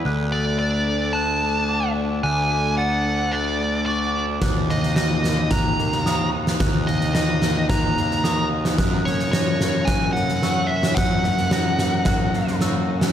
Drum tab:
SD |----------------|----------------|o-ooo-o-o-ooo--o|o-ooo-o-o-ooo--o|
BD |----------------|----------------|o-------o-------|o-------o-------|

SD |o-ooo-o-o-ooo--o|o-ooo-o-o-ooo--o|
BD |o-------o-------|o-------o-------|